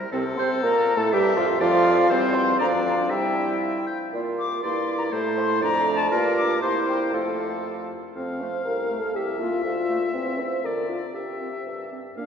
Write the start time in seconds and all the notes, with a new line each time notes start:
Already playing: A#4
0.00 C3 G3
0.12 C2 C3 C4 A4 C5
0.37 C3 C4 C5 C6
0.63 A#2 A#3 A#4 A#5
0.96 A2 A3 A4 A5
1.12 G2 G3 G4 E5 G5
1.37 F2 F3 F4 F5
1.60 F2 F3 F4 D5 F5
2.09 E2 G3 C4 C5
2.34 C6
2.59 D2 F3 D4 D5 A#5
2.85 F5
3.10 C3 G3 E4 E5 G5
3.61 E5
3.87 G5
4.13 A#2 A#3 F4 D5
4.39 D6
4.63 G2 A#3 E4 D5 C6
4.98 A#5
5.12 A2 A3 E4 C5
5.39 C6
5.62 F2 A3 D4 D5 A#5
5.95 A5
6.11 G2 A#3 F4 A#4 D5
6.37 D6
6.61 C3 A#3 E4 C5 C6
6.89 G5
7.12 F2 A3 F4 A4 F5
8.16 F2 C4 F5
8.40 A3 C5 F5
8.65 C2 A#4
8.91 A3 F5
8.99 A4
9.15 C2 G4 E5
9.40 A#3 F4 E5
9.64 D2 F4
9.89 A3 F5
10.14 E2 C4
10.38 C4 C5 G5
10.64 D3 A#4 D5
10.89 D4 F4 F5
11.14 C3 G4 E5
11.40 C4 E5
11.66 G2
11.92 C4 E5
12.17 A#2 A#3 D4 F5